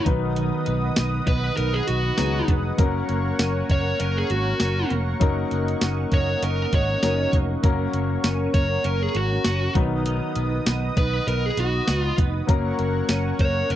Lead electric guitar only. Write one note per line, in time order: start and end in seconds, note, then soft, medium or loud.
1.28 1.56 B4 medium
1.57 1.74 A#4 medium
1.74 1.87 G#4 medium
1.87 2.48 F#4 medium
3.71 4.00 C#5 medium
4.01 4.17 A#4 medium
4.17 4.31 G#4 medium
4.31 4.91 F#4 medium
6.14 6.44 C#5 medium
6.44 6.74 A#4 medium
6.75 7.30 C#5 medium
8.54 8.83 C#5 medium
8.86 9.03 A#4 medium
9.03 9.16 G#4 medium
9.16 9.72 F#4 medium
10.98 11.28 B4 medium
11.28 11.46 A#4 medium
11.46 11.59 G#4 medium
11.59 11.99 F#4 medium
11.99 12.15 F4 medium
13.41 13.71 C#5 medium
13.71 13.76 A#4 medium